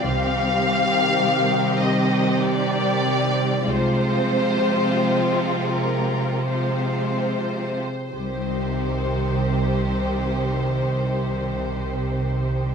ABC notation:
X:1
M:3/4
L:1/8
Q:1/4=41
K:Cm
V:1 name="Violin section"
f3 e d2 | c3 B c2 | c6 |]
V:2 name="Violin section"
[CG]6 | [CF]4 [CF]2 | [CG]6 |]
V:3 name="Harp"
(3[C,G,C] G, C (3G, E G, (3C G, E | (3C, A, C (3A, F A, (3C A, F | [C,G,CEce]6 |]
V:4 name="Viola section" clef=bass
[E,G,]6 | [F,A,]4 [F,A,]2 | [E,G,]6 |]
V:5 name="Cello section" clef=bass
C,6 | C,6 | C,6 |]
V:6 name="Double bass section" clef=bass
C,,2 z4 | C,,2 z4 | C,,6 |]